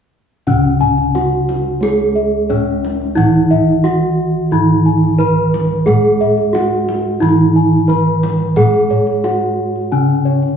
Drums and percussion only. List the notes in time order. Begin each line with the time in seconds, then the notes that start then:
0.47 kendang low
0.64 kendang slap
0.81 kendang low
0.98 kendang slap
1.15 kendang high
1.49 kendang high
1.83 kendang high
2.00 kendang slap
2.50 kendang low
2.84 kendang high
3.01 kendang slap
3.18 kendang low
3.35 kendang slap
3.52 kendang low
3.69 kendang slap
3.85 kendang high
4.70 kendang slap
5.04 kendang slap
5.20 kendang low
5.54 kendang high
5.71 kendang slap
5.87 kendang low
6.05 kendang slap
6.22 kendang low
6.38 kendang slap
6.55 kendang high
6.89 kendang high
7.22 kendang high
7.39 kendang slap
7.73 kendang slap
7.90 kendang low
8.23 kendang high
8.40 kendang slap
8.56 kendang low
8.74 kendang slap
8.90 kendang low
9.07 kendang slap
9.24 kendang high
9.42 kendang slap
9.76 kendang slap
10.10 kendang slap
10.43 kendang slap